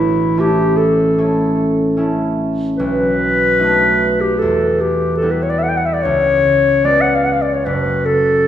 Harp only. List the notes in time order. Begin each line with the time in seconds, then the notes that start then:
Already playing: A1 E4
0.37 A3 C#4 E4
1.18 A3 C#4 E4
1.97 A3 C#4 E4
2.79 B1
3.59 A3 B3 D#4
4.42 E2
5.22 G3 B3 E4
6.05 C#2
6.84 G#3 B3 F4
7.66 F#1